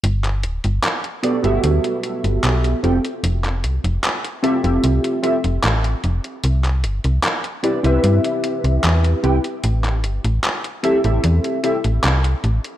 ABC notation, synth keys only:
X:1
M:4/4
L:1/16
Q:1/4=75
K:G
V:1 name="Synth keys"
z6 [B,FGAd] [B,FGAe]6- [B,FGAe] [C=FGAg] z | z6 [C=FGAe] [CFGAe]3 [CFGAe] z4 z | z6 [CEGBd] [CEGBe]6- [CEGBe] [CEGBg] z | z6 [CEGAe] [CEGAe]3 [CEGAe] z4 z |]